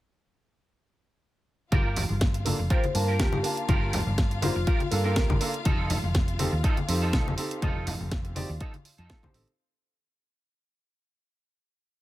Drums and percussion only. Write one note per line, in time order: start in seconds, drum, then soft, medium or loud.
1.72 kick loud
1.72 closed hi-hat medium
1.72 high conga medium
1.96 open hi-hat medium
1.96 low conga medium
2.09 high conga medium
2.21 kick loud
2.21 snare loud
2.21 closed hi-hat medium
2.34 closed hi-hat medium
2.46 open hi-hat medium
2.46 high conga medium
2.70 kick loud
2.70 closed hi-hat medium
2.84 closed hi-hat soft
2.84 high conga medium
2.95 open hi-hat loud
3.20 kick loud
3.20 snare loud
3.20 closed hi-hat medium
3.33 high conga medium
3.44 open hi-hat medium
3.57 closed hi-hat medium
3.68 kick loud
3.68 closed hi-hat medium
3.68 high conga medium
3.93 open hi-hat loud
3.93 low conga loud
4.07 high conga medium
4.18 kick loud
4.18 snare loud
4.18 closed hi-hat medium
4.31 closed hi-hat soft
4.42 open hi-hat medium
4.42 high conga loud
4.67 kick loud
4.67 closed hi-hat medium
4.80 closed hi-hat soft
4.80 high conga medium
4.92 open hi-hat loud
5.16 kick loud
5.16 snare loud
5.16 closed hi-hat medium
5.30 kick medium
5.30 high conga loud
5.41 open hi-hat medium
5.54 closed hi-hat soft
5.65 kick loud
5.65 closed hi-hat medium
5.65 high conga medium
5.90 open hi-hat loud
5.90 low conga medium
6.04 high conga medium
6.15 kick loud
6.15 snare loud
6.15 closed hi-hat medium
6.28 closed hi-hat medium
6.39 open hi-hat loud
6.39 high conga medium
6.64 kick loud
6.64 closed hi-hat medium
6.77 closed hi-hat soft
6.77 high conga medium
6.89 open hi-hat loud
7.13 kick loud
7.13 snare loud
7.13 closed hi-hat medium
7.28 high conga medium
7.38 open hi-hat medium
7.51 closed hi-hat medium
7.62 kick loud
7.62 closed hi-hat medium
7.62 high conga medium
7.87 open hi-hat loud
7.87 low conga medium
8.01 high conga medium
8.11 kick loud
8.11 snare loud
8.11 closed hi-hat medium
8.25 closed hi-hat soft
8.36 open hi-hat medium
8.36 high conga medium
8.60 kick loud
8.60 closed hi-hat medium
8.74 closed hi-hat soft
8.74 high conga medium
8.85 open hi-hat loud
8.98 closed hi-hat soft
9.10 kick loud
9.10 snare loud
9.10 closed hi-hat medium
9.23 kick medium
9.23 high conga loud
9.34 open hi-hat medium
9.48 closed hi-hat soft